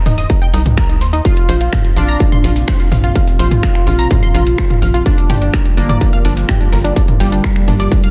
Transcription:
0.06 analog synth bass D#1, synth arpeggio sound D#4, mid tom, open hi-hat, ride
0.18 synth arpeggio sound D#5, snare, closed hi-hat
0.30 synth arpeggio sound D#4, kick, closed hi-hat, ride
0.42 synth arpeggio sound G5, closed hi-hat
0.54 analog synth bass C2, synth arpeggio sound D#4, open hi-hat, ride
0.66 closed hi-hat, mid tom
0.77 synth arpeggio sound A#4, finger snap, kick, snare, closed hi-hat, ride
0.89 synth arpeggio sound D#4, closed hi-hat
1.01 analog synth bass D#2, synth arpeggio sound C5, open hi-hat, ride
1.13 synth arpeggio sound D#4, closed hi-hat
1.25 analog synth pad A#2 C3 F3 C4 F4, synth arpeggio sound F4, analog polysynth F4, kick, closed hi-hat, ride
1.37 closed hi-hat, ride
1.49 analog synth bass A#1, synth arpeggio sound C5, open hi-hat, ride
1.61 synth arpeggio sound F4, closed hi-hat, ride
1.73 synth arpeggio sound F5, finger snap, kick, snare, closed hi-hat, mid tom, ride
1.85 closed hi-hat, ride
1.96 analog synth bass A#1, analog polysynth D4, synth arpeggio sound F4, open hi-hat, ride
2.08 synth arpeggio sound A#5, closed hi-hat
2.20 synth arpeggio sound F4, kick, closed hi-hat, ride
2.32 synth arpeggio sound C6, closed hi-hat, mid tom
2.44 analog synth bass A#1, synth arpeggio sound F4, open hi-hat, ride
2.56 snare, closed hi-hat
2.68 synth arpeggio sound C5, finger snap, kick, snare, closed hi-hat, ride
2.80 synth arpeggio sound F4, closed hi-hat
2.92 analog synth bass A#1, synth arpeggio sound F5, snare, mid tom, open hi-hat, ride
3.04 synth arpeggio sound F4, closed hi-hat
3.15 synth arpeggio sound F4, kick, closed hi-hat, ride
3.27 snare, closed hi-hat
3.39 analog synth bass A#1, analog polysynth F4, synth arpeggio sound C5, open hi-hat, ride
3.51 synth arpeggio sound F4, closed hi-hat, mid tom
3.63 synth arpeggio sound F5, finger snap, kick, snare, closed hi-hat, ride
3.75 finger snap, closed hi-hat
3.87 analog synth bass A#1, synth arpeggio sound F4, open hi-hat, ride
3.99 synth arpeggio sound A#5, snare, closed hi-hat
4.11 synth arpeggio sound F4, kick, closed hi-hat, mid tom, ride
4.23 synth arpeggio sound C6, closed hi-hat
4.34 analog synth bass A#1, synth arpeggio sound F4, open hi-hat, ride
4.47 closed hi-hat
4.58 synth arpeggio sound C5, finger snap, kick, snare, closed hi-hat, ride
4.70 synth arpeggio sound F4, closed hi-hat, mid tom
4.82 analog synth bass A#1, synth arpeggio sound F5, open hi-hat, ride
4.94 synth arpeggio sound F4, closed hi-hat
5.06 analog synth pad D3 G3 A#3 F4, synth arpeggio sound D4, analog polysynth D4, kick, closed hi-hat, ride
5.18 closed hi-hat, ride
5.30 analog synth bass G1, synth arpeggio sound G4, mid tom, open hi-hat, ride
5.42 synth arpeggio sound D4, closed hi-hat, ride
5.53 synth arpeggio sound A#4, finger snap, kick, snare, closed hi-hat, ride
5.66 closed hi-hat, ride
5.77 analog synth bass G1, analog polysynth A#3, synth arpeggio sound D4, open hi-hat, ride
5.89 synth arpeggio sound D5, closed hi-hat, mid tom
6.01 synth arpeggio sound D4, kick, closed hi-hat, ride
6.13 synth arpeggio sound F5, closed hi-hat
6.25 analog synth bass G1, synth arpeggio sound D4, open hi-hat, ride
6.37 snare, closed hi-hat
6.49 synth arpeggio sound G4, finger snap, kick, snare, closed hi-hat, mid tom, ride
6.61 synth arpeggio sound D4, closed hi-hat
6.72 analog synth bass G1, synth arpeggio sound A#4, snare, open hi-hat, ride
6.84 synth arpeggio sound D4, closed hi-hat, ride
6.96 synth arpeggio sound D4, kick, closed hi-hat, ride
7.08 closed hi-hat, mid tom
7.20 analog synth bass G1, analog polysynth G3, synth arpeggio sound G4, open hi-hat, ride
7.32 synth arpeggio sound D4, closed hi-hat
7.44 synth arpeggio sound A#4, finger snap, kick, snare, closed hi-hat, ride
7.56 finger snap, closed hi-hat
7.68 analog synth bass G1, synth arpeggio sound D4, mid tom, open hi-hat, ride
7.80 synth arpeggio sound D5, snare, closed hi-hat
7.92 synth arpeggio sound D4, kick, closed hi-hat, ride
8.04 synth arpeggio sound F5, closed hi-hat

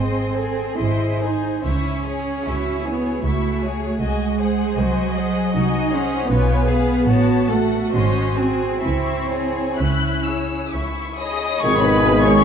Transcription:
Already playing: double bass section G#1, cello section C4, viola section G#4, violin section C5 D#5 C6
0.35 violin section G#4 C5 G#5, viola section A4
0.78 double bass section G#1, cello section E4, viola section G#4, violin section C5 D#5 C6
1.21 cello section D#4, violin section G#4 C5 G#5, viola section C5
1.64 double bass section C#2, cello section C#4, violin section E4 E5 C#6, triangle
2.06 violin section G#4 C#5 G#5
2.46 double bass section C#2, violin section E4 E5 C#6, viola section F#4
2.84 cello section B3, viola section E4, violin section G#4 C#5 G#5
3.22 double bass section C#2, cello section A3, violin section E4 E5 C#6, viola section F#4
3.62 violin section G#4 C#5 G#5
4.00 double bass section C2, cello section G#3, violin section F#4 D#5 G#5, viola section G#4
4.41 violin section G#4 C5 F#5
4.78 double bass section C2, cello section F#3, violin section F#4 D#5 G#5, viola section C5
5.15 violin section G#4 C5 F#5, viola section D#5
5.54 double bass section C2, cello section D#4, violin section F#4 D#5 G#5
5.92 cello section C#4, violin section G#4 C5 F#5
6.30 double bass section B1, cello section B3, violin section F4 C#5 G#5, viola section B4
6.68 viola section G#4, violin section G#4 B4 F5
7.07 double bass section A1, violin section F#4 C#5 A5, viola section F#4
7.49 cello section A3, viola section F#4, violin section A4 F#5
7.92 double bass section G#1, cello section C#4, violin section C5 D#5 C6
8.36 cello section C4, violin section G#4 C5 G#5
8.82 double bass section C#2, cello section C4, violin section E4 E5 C#6, viola section E4
9.30 violin section G#4 C#5 G#5
9.76 double bass section C#2, cello section C#4, violin section E4 E5 F#6
10.24 violin section G#4 E6
10.28 violin section C#5
10.72 double bass section C#2, violin section E4 E5 C#6
11.17 violin section C#5 D#5 B5 D#6
11.21 violin section G#4
11.59 tuba G#1, double bass section G#1, cello section G#2, viola section G#3 B3, trumpet section G#4, violin section C#5 C#6, oboe D#5, flute G#6
11.63 bassoon D#3, french horn section D#3 D#4, tam-tam
11.80 violin section B5
11.85 violin section B4
12.22 violin section C#5 C#6
12.41 violin section B5

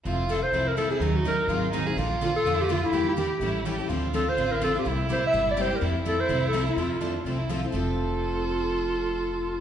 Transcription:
0.05 upright bass F1, steel-string acoustic guitar F3 A3 C4 E4 A4, violin F4
0.29 steel-string acoustic guitar F3 A3 C4 E4 A4, clarinet A4
0.43 clarinet C5
0.52 upright bass C2, steel-string acoustic guitar F3 A3 C4 E4 A4, violin E4
0.68 clarinet A#4
0.77 steel-string acoustic guitar F3 A3 C4 E4 A4, clarinet A4
0.89 steel-string acoustic guitar C4 E4 A4, clarinet G#4
1.00 upright bass D#2, steel-string acoustic guitar D#3 F#3 C#4 D#4 A#4, violin D#4
1.16 clarinet F#4
1.25 steel-string acoustic guitar D#3 F#3 C#4 D#4 A#4, clarinet A#4
1.48 upright bass G#1, steel-string acoustic guitar D#3 F#3 C4 D#4 G#4, violin F4
1.72 steel-string acoustic guitar D#3 F#3 C4 D#4 G#4, violin D#4
1.86 steel-string acoustic guitar C4 D#4 G#4, violin G#4
1.96 upright bass A#1, steel-string acoustic guitar D3 F3 A#3 D4 A4, violin F4
2.21 steel-string acoustic guitar D3 F3 A#3 D4 A4, clarinet F4
2.36 clarinet A4
2.44 upright bass F2, steel-string acoustic guitar D3 F3 A#3 D4 A4
2.61 clarinet G4
2.69 steel-string acoustic guitar D3 F3 A#3 D4 A4, clarinet F4
2.83 steel-string acoustic guitar A#3 D4 A4, clarinet E4
2.92 upright bass E2, steel-string acoustic guitar E3 G3 A#3 D4 E4 G4 A#4, violin G4
3.09 clarinet E4
3.17 steel-string acoustic guitar E3 G3 A#3 D4 E4 G4 A#4, clarinet G4
3.40 upright bass A1, steel-string acoustic guitar E3 G3 C#4 E4 A4, violin E4
3.65 steel-string acoustic guitar E3 G3 C#4 E4 A4, violin G4
3.78 steel-string acoustic guitar C#4 E4 A4
3.89 upright bass D2, steel-string acoustic guitar D3 F3 C4 D4 A4, violin F4
4.13 steel-string acoustic guitar D3 F3 C4 D4 A4, clarinet A4
4.29 clarinet C5
4.37 upright bass A1, steel-string acoustic guitar D3 F3 C4 D4 A4
4.52 clarinet A#4
4.61 steel-string acoustic guitar D3 F3 C4 D4 A4, clarinet A4
4.74 steel-string acoustic guitar C4 D4 A4
4.79 clarinet G4
4.85 upright bass C2, steel-string acoustic guitar C3 G3 A#3 E4 G4, violin E4
5.10 steel-string acoustic guitar C3 G3 A#3 E4 G4, clarinet C5
5.27 clarinet E5
5.33 upright bass G1, steel-string acoustic guitar C3 G3 A#3 E4 G4
5.51 clarinet D5
5.57 steel-string acoustic guitar C3 G3 A#3 E4 G4, violin G4
5.61 clarinet C5
5.70 steel-string acoustic guitar A#3 E4 G4
5.76 clarinet A#4
5.81 upright bass F2, steel-string acoustic guitar F3 A3 C4 E4 A4, violin E4
6.06 steel-string acoustic guitar F3 A3 C4 E4 A4, clarinet A4
6.21 clarinet C5
6.29 upright bass C2, steel-string acoustic guitar F3 A3 C4 E4 A4
6.48 clarinet A4
6.53 steel-string acoustic guitar F3 A3 C4 E4 A4
6.66 steel-string acoustic guitar C4 E4 A4, clarinet F4
6.77 upright bass F2, steel-string acoustic guitar F3 A3 C4 E4 A4
7.00 steel-string acoustic guitar F3 A3 C4 E4 A4, violin D4
7.25 upright bass C2, steel-string acoustic guitar F3 A3 C4 E4 A4, violin C4
7.39 violin E4
7.49 steel-string acoustic guitar F3 A3 C4 E4 A4, violin F4
7.63 steel-string acoustic guitar C4 E4 A4
7.72 upright bass F1, steel-string acoustic guitar F3 A3 C4 A4, clarinet F4, violin A4

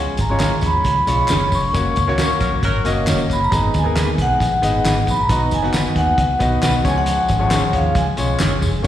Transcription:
Already playing: tonewheel organ F3 G#3 C#4 F4, grand piano G#3 C#4 F4 C#5, vibraphone G#5
0.17 fingered electric bass G#1, vibraphone A#5, kick, closed hi-hat, tambourine
0.29 grand piano G#3 C#4 F4 C#5
0.40 clean electric guitar C#4 F4 G#4 C#5, snare, clap, closed hi-hat, tambourine
0.52 snare
0.61 fingered electric bass D#2, kick, closed hi-hat, tambourine
0.66 vibraphone B5
0.84 fingered electric bass C#2, kick, closed hi-hat, tambourine
1.07 fingered electric bass B1, grand piano G#3 C#4 F4 C#5, closed hi-hat, tambourine
1.28 fingered electric bass F#1, clean electric guitar C#4 F4 G#4 C#5, snare, clap, closed hi-hat, tambourine
1.52 fingered electric bass F1, vibraphone C#6, kick, open hi-hat, tambourine
1.73 fingered electric bass F#1, tonewheel organ F#3 A#3 F#4, grand piano A#3 C#4 F#4 C#5, kick, closed hi-hat, tambourine
1.96 fingered electric bass C#2, kick, closed hi-hat, tambourine
2.07 grand piano A#3 C#4 F#4 C#5, snare
2.18 clean electric guitar C#4 F#4 A#4 C#5, snare, clap, closed hi-hat, tambourine
2.30 snare
2.40 fingered electric bass A#1, saxophone section F#3 C#4 A#4, kick, closed hi-hat, tambourine
2.63 fingered electric bass G#1, saxophone section F#3 C#4 A#4, kick, closed hi-hat
2.84 fingered electric bass F#1, grand piano A#3 C#4 F#4 D#5, closed hi-hat, tambourine
3.07 fingered electric bass F1, clean electric guitar C#4 F#4 A#4 C#5, snare, clap, closed hi-hat, tambourine
3.30 fingered electric bass F#1, vibraphone B5, kick, closed hi-hat, tambourine
3.44 vibraphone A#5
3.51 fingered electric bass G#1, tonewheel organ G#3 B3 D#4 G#4, grand piano B3 D#4 G#4 D#5, kick, closed hi-hat, tambourine
3.74 fingered electric bass D#2, kick, closed hi-hat, tambourine
3.78 vibraphone G#5
3.84 grand piano B3 D#4 G#4 A#4
3.96 clean electric guitar B3 D#4 G#4 B4, snare, clap, closed hi-hat, tambourine
4.18 fingered electric bass B1, vibraphone F#5, kick, closed hi-hat, tambourine
4.40 fingered electric bass A#1, kick, closed hi-hat, tambourine
4.62 fingered electric bass G#1, grand piano B3 D#4 G#4 D#5, snare, closed hi-hat, tambourine
4.85 fingered electric bass G#1, clean electric guitar B3 D#4 G#4 B4, snare, clap, closed hi-hat, tambourine
5.07 fingered electric bass A#1, vibraphone B5, kick, closed hi-hat, tambourine
5.21 vibraphone A#5
5.29 fingered electric bass B1, tonewheel organ F#3 D#4 F#4, grand piano B3 D#4 F#4 D#5, kick, closed hi-hat, tambourine
5.51 fingered electric bass F#1, vibraphone G#5, kick, closed hi-hat, tambourine
5.62 grand piano B3 D#4 F#4 F#5, snare
5.74 clean electric guitar B3 D#4 F#4 B4, snare, clap, closed hi-hat, tambourine
5.85 snare
5.96 fingered electric bass D#2, vibraphone F#5, kick, closed hi-hat
6.18 fingered electric bass C#2, kick, closed hi-hat
6.39 fingered electric bass B1, grand piano B3 D#4 F#4 D#5, kick, snare, closed hi-hat, tambourine
6.63 fingered electric bass B1, clean electric guitar B3 D#4 F#4 B4, snare, clap, closed hi-hat, tambourine
6.83 fingered electric bass C#2, tonewheel organ F3 G#3 C#4 G#4, grand piano F3 G#3 C#4 C#5, vibraphone G#5, kick, closed hi-hat, tambourine
6.98 vibraphone F#5
7.06 closed hi-hat, tambourine
7.28 fingered electric bass G#1, kick, closed hi-hat, tambourine
7.39 grand piano F3 G#3 C#4 C#5
7.51 clean electric guitar C#4 F4 G#4 C#5, snare, clap, closed hi-hat, tambourine
7.63 snare
7.73 fingered electric bass D#2, vibraphone F5, kick, closed hi-hat
7.95 fingered electric bass C#2, vibraphone G#5, kick, closed hi-hat, tambourine
8.17 fingered electric bass B1, grand piano G#3 C#4 F4 C#5, closed hi-hat, tambourine
8.40 fingered electric bass F#1, clean electric guitar C#4 F4 G#4 C#5, snare, clap, closed hi-hat, tambourine
8.62 fingered electric bass F1, kick, open hi-hat, tambourine
8.82 grand piano A#3 C#4 F#4

